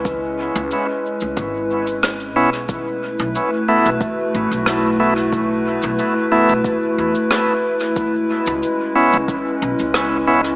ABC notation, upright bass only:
X:1
M:4/4
L:1/16
Q:1/4=91
K:C#m
V:1 name="Upright bass" clef=bass
C,,3 C,, z3 C,, G,,,6 B,,,2- | B,,,3 B,,, z3 B,,, z2 A,,, B,,,4- B,,,- | B,,,3 B,,, z3 B,,, z2 E,, z4 z | z3 C,, z3 C,, z2 B,,, C,,4- C,, |]